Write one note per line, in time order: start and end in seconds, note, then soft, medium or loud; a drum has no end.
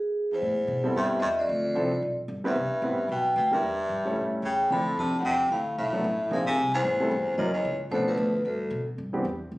0.00 0.28 G#4 medium
0.32 0.92 E2 medium
0.32 0.93 C5 medium
0.42 0.67 A2 medium
0.68 0.94 B2 medium
0.84 1.20 G3 medium
0.84 1.20 B3 medium
0.84 1.20 C4 medium
0.84 1.20 E4 medium
0.84 1.21 A4 medium
0.95 1.21 G2 medium
0.95 1.18 G2 medium
0.95 1.21 E5 medium
1.19 1.48 E2 medium
1.19 1.21 F2 medium
1.19 1.29 G2 medium
1.19 1.23 D#5 medium
1.19 1.30 E5 medium
1.39 2.15 F2 medium
1.39 2.15 D5 medium
1.49 1.75 D2 medium
1.75 2.02 C2 medium
1.75 1.90 F3 medium
1.75 1.90 C4 medium
1.75 1.90 D4 medium
1.75 1.90 E4 medium
1.75 1.90 A4 medium
2.02 2.28 B1 medium
2.28 2.55 G1 medium
2.44 3.06 G2 medium
2.44 2.55 G3 medium
2.44 2.55 B3 medium
2.44 2.55 C4 medium
2.44 2.55 E4 medium
2.44 2.55 B4 medium
2.44 3.07 E5 medium
2.56 2.70 C2 medium
2.82 3.08 A1 medium
2.82 2.97 G3 medium
2.82 2.97 B3 medium
2.82 2.97 C4 medium
2.82 2.97 E4 medium
2.82 2.97 B4 medium
3.09 3.35 B1 medium
3.09 3.35 B2 medium
3.09 3.36 G5 medium
3.36 3.62 D2 medium
3.36 3.51 B2 medium
3.36 3.52 G5 medium
3.52 4.29 G2 medium
3.52 3.62 G3 medium
3.52 3.62 A#3 medium
3.52 3.62 D4 medium
3.52 3.62 E4 medium
3.52 3.62 A#4 medium
3.52 4.29 E5 medium
3.63 3.88 E2 medium
3.89 4.15 G2 medium
4.05 4.41 G3 medium
4.05 4.42 A3 medium
4.05 4.42 C#4 medium
4.05 4.42 E4 medium
4.05 4.42 A4 medium
4.16 4.31 A2 medium
4.31 muted upright bass stroke soft
4.43 4.69 E2 medium
4.43 4.69 C#3 medium
4.43 4.72 G5 medium
4.70 4.96 D2 medium
4.70 4.96 D3 medium
4.70 5.44 F3 medium
4.70 5.44 C4 medium
4.70 5.44 D4 medium
4.70 5.44 E4 medium
4.70 5.44 A4 medium
4.70 4.99 B5 loud
4.97 5.23 F2 medium
4.97 5.18 C3 medium
4.97 5.20 A5 loud
5.19 5.24 A2 medium
5.19 5.24 F#5 medium
5.23 5.49 E2 medium
5.23 5.49 C3 medium
5.23 5.49 G5 medium
5.50 5.76 D2 medium
5.50 5.76 A2 medium
5.50 5.79 F5 medium
5.78 6.04 B1 medium
5.78 6.27 A2 medium
5.78 6.33 E5 medium
5.93 6.03 F#3 medium
5.93 6.03 A3 medium
5.93 6.03 B3 medium
5.93 6.03 D4 medium
5.93 6.03 A4 medium
6.04 6.30 A1 medium
6.31 6.45 A#1 medium
6.31 6.46 G#2 medium
6.31 6.45 F3 medium
6.31 6.45 A#3 medium
6.31 6.45 C4 medium
6.31 6.45 D4 medium
6.31 6.45 G#4 medium
6.31 6.47 F5 medium
6.46 6.71 C3 medium
6.46 6.72 G#5 medium
6.46 muted upright bass stroke soft
6.58 6.84 C2 medium
6.74 7.34 E2 medium
6.74 7.40 C5 medium
6.85 7.10 A1 medium
7.00 7.10 G3 medium
7.00 7.10 A3 medium
7.00 7.10 C4 medium
7.00 7.10 E4 medium
7.00 7.10 A4 medium
7.11 7.37 G1 medium
7.38 7.64 F#1 medium
7.38 7.52 F#2 medium
7.38 7.52 F#3 medium
7.38 7.52 A#3 medium
7.38 7.52 C#4 medium
7.38 7.52 E4 medium
7.38 7.52 A#4 medium
7.38 7.54 D#5 medium
7.53 7.78 E2 medium
7.53 7.79 C#5 medium
7.65 7.90 C#2 medium
7.91 8.17 B1 medium
7.91 8.06 F2 medium
7.91 8.30 F3 medium
7.91 8.30 A3 medium
7.91 8.31 B3 medium
7.91 8.31 D4 medium
7.91 8.31 A4 medium
7.91 8.07 C5 medium
8.07 8.42 D2 medium
8.07 8.46 B4 medium
8.17 8.43 D2 medium
8.45 8.84 D2 medium
8.45 8.70 G2 medium
8.45 8.85 A4 medium
8.70 8.97 B2 medium
8.98 9.24 G2 medium
9.13 9.23 E3 medium
9.13 9.23 B3 medium
9.13 9.24 C4 medium
9.13 9.24 D4 medium
9.13 9.24 G4 medium
9.25 9.51 E2 medium
9.52 9.58 C2 medium